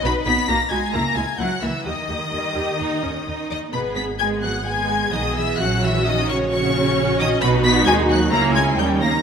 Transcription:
X:1
M:4/4
L:1/8
Q:1/4=130
K:G#m
V:1 name="Violin section"
b b' a' g' a' g' f' e' | d'6- d' d' | b b' g' f' g'2 d' e' | f' e' d' c' c'3 d' |
b b' g' f' a' g' =g' a' |]
V:2 name="Violin section"
B b a g a g f e | d6- d d | B b g f g2 d e | f e d c c3 d |
B b g f a g =g a |]
V:3 name="Viola section"
[DF] [DF] [DF] [DF] [A,E] [A,E] [A,E] [A,E] | [A,=G] [A,G] =G, G D C D2 | [B,G]2 [B,G]2 [B,G]2 [B,G]2 | [CF]4 [CF]4 |
[DF]4 [CE]2 [CD]2 |]
V:4 name="Cello section" clef=bass
B,, B, A, G, A, G, F, E, | D,6- D, D, | B,, B, G, F, G,2 D, E, | F, E, D, C, C,3 D, |
B,, B, G, F, A, G, =G, A, |]
V:5 name="Double bass section" clef=bass
B,,, B,,, B,,, B,,, C,, C,, C,, C,, | D,, D,, D,, D,, D,, D,, D,, D,, | G,,,6 B,,,2 | A,,,8 |
B,,,2 D,,2 C,,2 D,,2 |]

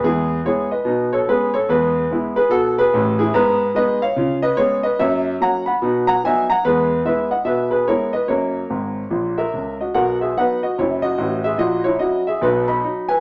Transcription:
X:1
M:4/4
L:1/8
Q:"Swing" 1/4=145
K:E
V:1 name="Grand piano"
[EG]2 [Gc] [Bd]2 [Ac] [GB] [Ac] | [GB]3 [GB] [FA] [GB]2 [EG] | [K:B] [GB]2 [Bd] [c^e]2 [Bd] [Gc] [Bd] | [ce]2 [fa] [fb]2 [fa] [eg] [fa] |
[GB]2 [Be] [df] [Be] [GB] [Ac] [Bd] | [Ac]4- [Ac] [Ae]2 [Fd] | [Af] [Ge] [Bf] [Fd] [Ec] [Fd]2 [Ge] | [Fd] [Ec] [Fd] [Ge] [DB] [db]2 [Bg] |]
V:2 name="Grand piano" clef=bass
[E,,G,]2 [G,B,E]2 [B,,D]2 [G,B,C]2 | [E,,G,]2 [G,B,E]2 B,,2 [A,,,A,,]2 | [K:B] [G,,B,]2 [G,B,D]2 [C,^E]2 [G,B,C]2 | [F,,A,]2 [F,A,C]2 [B,,D]2 [F,B,D]2 |
[E,,G,]2 [G,B,E]2 B,,2 [G,B,E]2 | [F,,A,]2 [G,,,G,,]2 [A,,,A,,]2 [C,,C,]2 | [B,,,B,,]2 [F,B,D]2 [F,,,F,,]2 [=A,,,=A,,]2 | [A,,,A,,]2 [F,CE]2 [B,,,B,,]2 [F,D]2 |]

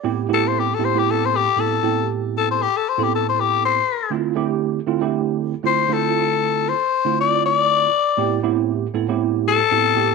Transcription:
X:1
M:4/4
L:1/16
Q:"Swing 16ths" 1/4=118
K:Am
V:1 name="Tenor saxophone"
z2 A c G A c G A c G2 A4 | z2 A c G A c G A c G2 c4 | z12 c2 A2- | A4 c4 d2 d6- |
d2 z8 A6 |]
V:2 name="Tine electric piano"
[A,,B,CEG]2 [A,,B,CEG]3 z [A,,B,CEG] [A,,B,CEG]4 z [A,,B,CEA]2 [A,,B,CEG]2- | [A,,B,CEG]4 z3 [A,,B,CEA]6 z3 | [D,A,CEF]2 [D,A,CEG]3 z [D,A,CEF] [D,A,CEG]4 z [D,A,CEF]2 [D,A,CEF]2- | [D,A,CEF]4 z3 [D,A,CEF]6 z3 |
[A,,B,CEG]2 [A,,B,CEG]3 z [A,,B,CEA] [A,,B,CEG]4 z [A,,B,CEG]2 [A,,B,CEG]2 |]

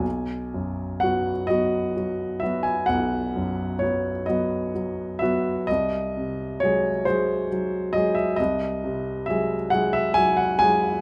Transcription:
X:1
M:12/8
L:1/16
Q:3/8=44
K:G#m
V:1 name="Grand piano"
g4 f2 d4 e g f4 c2 d4 e2 | d4 c2 ^B4 d e d4 e2 f e g f g2 |]
V:2 name="Grand piano" clef=bass
B,,,2 F,,2 [F,B,F]2 [F,B,F]2 F,2 [F,B,F]2 B,,,2 F,,2 [F,B,F]2 [F,B,F]2 F,2 [F,B,F]2 | ^B,,,2 ^B,,2 [F,G,G]2 [F,G,G]2 F,2 [F,G,G]2 B,,,2 B,,2 [F,G,G]2 [F,G,G]2 F,2 [F,G,G]2 |]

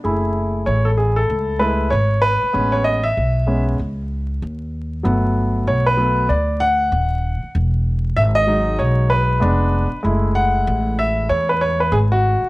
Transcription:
X:1
M:4/4
L:1/16
Q:"Swing 16ths" 1/4=96
K:F#dor
V:1 name="Grand piano"
z4 c A G A3 B2 c2 B2- | B c d e4 z8 z | z4 c B3 =d2 f6 | z4 e d3 c2 B6 |
z2 f4 e2 c B c B G F3 |]
V:2 name="Grand piano"
[A,EG]8- [A,EG]2 [G,A,E]2 z4 | [G,B,C]2 z4 [G,B,C]2 z8 | [F,A,B,]6 [F,A,B,]2 z8 | z6 [F,G,D]6 [_A,_C=D]2 z2 |
[G,A,E]16 |]
V:3 name="Upright bass" clef=bass
F,,,4 A,,,4 C,,4 G,,,3 z | A,,,4 B,,,4 C,,4 D,,4 | =G,,,4 B,,,4 =D,,4 ^D,,,3 z | E,,,4 G,,,4 B,,,4 =F,,,3 z |
F,,,4 A,,,4 E,,4 G,,,3 z |]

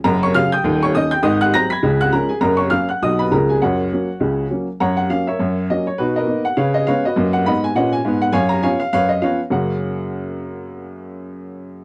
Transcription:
X:1
M:4/4
L:1/8
Q:"Swing" 1/4=202
K:F#
V:1 name="Upright piano"
[Aa] [cc'] [ee'] [=gd'=g']2 [cc'] [dd'] [gg'] | [dd'] [ff'] [aa'] [bg'b']2 [ff'] [Aa] [Gg] | [Aa] [cc'] [ee'] [ff'] [dd'] [Bb] [Aa] [Gg] | [Fcf]6 z2 |
[cfa] f e [Ac=e]3 d c | [DFB] [ABd]2 f [Bce] d [Bce] [FBd]- | [FBd] f [dfb] g [Bdf] g2 f | [ceg] a [ceg] e [Bce] d [Bce] z |
[F,,C,A,CFAf]8- | [F,,C,A,CFAf]8 |]
V:2 name="Upright piano" clef=bass
[F,,,F,,]2 [C,F,C]2 [D,,,D,,]2 [D,A,C]2 | [G,,,G,,]2 [F,G,^B,]2 [C,,C,]2 [E,G,C]2 | [F,,,F,,]2 [F,A,C]2 [B,,,B,,F,B,D]2 [C,,C,E,G,C]2 | [F,,,F,,]2 [F,A,C]2 [C,,C,]2 [F,A,C]2 |
F,,2 [F,A,C]2 F,,2 [F,A,C]2 | B,,2 [A,B,D]2 C,2 [G,B,C]2 | [F,,A,]2 [G,,B,]2 [A,,C]2 [G,,B,]2 | F,,2 [E,B,C]2 F,,2 [E,B,C]2 |
z8 | z8 |]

